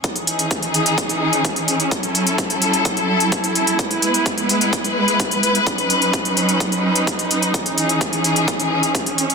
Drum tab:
HH |xxxxxxxxxx-xxxxx|xxxxxxxxxx-xxxxx|xxxxxxxxxx-xxxxx|xxxxxxxxxx-xxxxx|
BD |o---o---o---o---|o---o---o---o---|o---o---o---o---|o---o---o---o---|

HH |xxxxxxxxxx-xxxxx|
BD |o---o---o---o---|